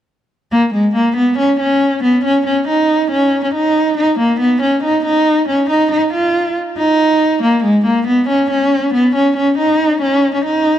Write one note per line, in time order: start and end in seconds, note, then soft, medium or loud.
0.52 0.69 A#3 loud
0.73 0.90 G#3 medium
0.95 1.12 A#3 medium
1.16 1.33 B3 medium
1.38 1.55 C#4 medium
1.60 2.00 C#4 medium
2.03 2.20 B3 medium
2.25 2.41 C#4 medium
2.46 2.63 C#4 medium
2.68 3.08 D#4 medium
3.11 3.41 C#4 medium
3.43 3.52 C#4 medium
3.54 3.95 D#4 medium
3.97 4.14 D#4 medium
4.19 4.36 A#3 medium
4.40 4.57 B3 medium
4.62 4.79 C#4 medium
4.83 5.00 D#4 medium
5.05 5.46 D#4 medium
5.48 5.65 C#4 medium
5.70 5.87 D#4 loud
5.91 6.08 D#4 medium
6.13 6.54 F4 medium
6.78 7.39 D#4 medium
7.42 7.59 A#3 medium
7.64 7.81 G#3 medium
7.85 8.02 A#3 medium
8.07 8.24 B3 medium
8.29 8.46 C#4 medium
8.50 8.91 C#4 medium
8.94 9.10 B3 medium
9.15 9.32 C#4 medium
9.37 9.54 C#4 medium
9.58 9.99 D#4 medium
10.02 10.32 C#4 medium
10.34 10.42 C#4 medium
10.45 10.79 D#4 medium